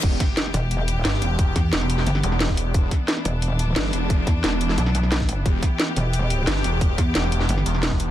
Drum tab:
CC |x---------------|----------------|----------------|----------------|
HH |x-x-x-x-x-x-x-x-|x-x-x-x-x-x-x-x-|x-x-x-x-x-x-x-x-|x-x-x-x-x-x-x-x-|
SD |--o-oo------o-o-|--o-oo-o-o-oo---|--o-oo------o-o-|--o-oo-o-o-oo---|
BD |o-o-------------|o-o----------o--|o-o-------------|o-o----------o--|

CC |----------------|----------------|
HH |x-x-x-x-x-x-x-x-|x-x-x-x-x-x-x-x-|
SD |--o-oo------o-o-|--o-oo-o-o-oo---|
BD |o-o-------------|o-o----------o--|